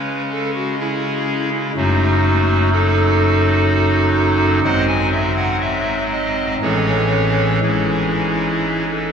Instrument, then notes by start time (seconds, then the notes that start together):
pipe organ
Already playing: C#3 G#3 C#4 B4
0.31 A4
0.55 F#4
0.79 C#4 E4 G#4
1.52 E4
1.76 F#1 F#2 F#3 A3 D#4 F#4
2.72 D#4 F#4 A4
4.64 G#1 G#2 F#3 G#3 C4 C5 D#5 F#5
4.88 G#5
5.12 E5
5.36 F#5
5.61 E5
6.12 D#5
6.61 A1 A2 E3 G#3 C#4 G#4 A4 C#5
7.62 G#1 G#2 E3 G#3 C#4 E4 G#4
8.88 A4